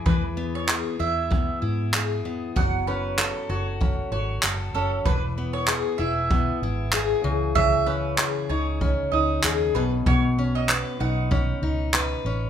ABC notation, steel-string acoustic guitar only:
X:1
M:4/4
L:1/8
Q:"Swing 16ths" 1/4=96
K:E
V:1 name="Steel-string acoustic guitar"
E, B, G E B, E G B, | F, C A F C F A C | E, B, G E B, E G C, | C, C G D C D G B,, |
B,, C B D C D B C |]